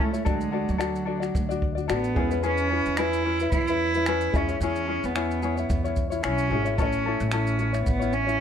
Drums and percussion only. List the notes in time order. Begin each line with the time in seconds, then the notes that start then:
0.14 shaker
0.26 kick, shaker
0.41 shaker
0.69 shaker
0.80 finger snap, shaker
0.95 shaker
1.23 finger snap, shaker
1.35 kick, shaker
1.51 shaker
1.62 kick
1.78 shaker
1.89 finger snap, shaker
2.04 shaker
2.16 kick
2.31 shaker
2.43 shaker
2.57 shaker
2.86 shaker
2.97 finger snap, shaker
3.13 shaker
3.40 shaker
3.52 kick, shaker
3.67 shaker
3.94 shaker
4.06 finger snap, shaker
4.21 shaker
4.34 kick, shaker
4.49 shaker
4.61 shaker
4.76 shaker
5.04 shaker
5.15 finger snap, shaker
5.31 shaker
5.42 shaker
5.57 shaker
5.70 kick, shaker
5.85 shaker
5.96 kick, shaker
6.12 shaker
6.23 finger snap, shaker
6.38 shaker
6.66 shaker
6.78 kick, shaker
6.92 shaker
7.20 shaker
7.31 finger snap, shaker
7.47 shaker
7.59 shaker
7.74 finger snap, shaker
7.86 kick, shaker
8.02 shaker
8.13 shaker
8.29 shaker